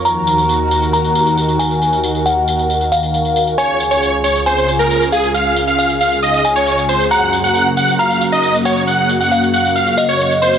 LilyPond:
<<
  \new Staff \with { instrumentName = "Synth bell" } { \time 4/4 \key des \major \tempo 4 = 136 bes''2 bes''4. aes''8~ | aes''4 ges''4. f''4. | aes''2 aes''4. f''8~ | f''4 f''4. aes''4. |
bes''2 bes''4. ges''8~ | ges''4 f''4. ees''4. | }
  \new Staff \with { instrumentName = "Supersaw synth" } { \time 4/4 \key des \major r1 | r1 | des''8 r16 des''8 r16 des''16 r16 c''8 r16 bes'8 r16 aes'16 r16 | f''8 r16 f''8 r16 f''16 r16 ees''8 r16 des''8 r16 c''16 r16 |
ges''8 r16 ges''8 r16 ges''16 r16 f''8 r16 ees''8 r16 des''16 r16 | ges''8 r16 ges''8 r16 ges''16 r16 f''8 r16 des''8 r16 c''16 r16 | }
  \new Staff \with { instrumentName = "Analog synth pad" } { \time 4/4 \key des \major << { <ees, ges' bes'>1~ | <ees, ges' bes'>1 | <des, f' aes'>1~ | <des, f' aes'>1 |
<ges, bes ges'>1~ | <ges, bes ges'>1 | } \\ { ees1~ | ees1 | des1~ | des1~ |
des1~ | des1 | } >> }
  \new DrumStaff \with { instrumentName = "Drums" } \drummode { \time 4/4 tamb8 tamb16 tamb16 tamb8 tamb16 tamb16 tamb16 tamb16 tamb16 tamb16 tamb16 tamb16 tamb16 tamb16 | tamb16 tamb16 tamb16 tamb16 tamb8 tamb16 tamb16 tamb16 tamb16 tamb16 tamb16 tamb16 tamb16 tamb16 tamb16 | tamb8 tamb16 tamb16 tamb8 tamb16 tamb16 tamb16 tamb16 tamb16 tamb16 tamb16 tamb16 tamb16 tamb16 | tamb8 tamb16 tamb16 tamb16 tamb16 tamb16 tamb16 tamb16 tamb16 tamb16 tamb16 tamb16 tamb16 tamb16 tamb16 |
tamb8 tamb16 tamb16 tamb8 tamb16 tamb16 tamb16 tamb16 tamb16 tamb16 tamb16 tamb16 tamb16 tamb16 | tamb8 tamb16 tamb16 tamb16 tamb16 tamb16 tamb16 tamb16 tamb16 tamb16 tamb16 tamb16 tamb16 tamb16 tamb16 | }
>>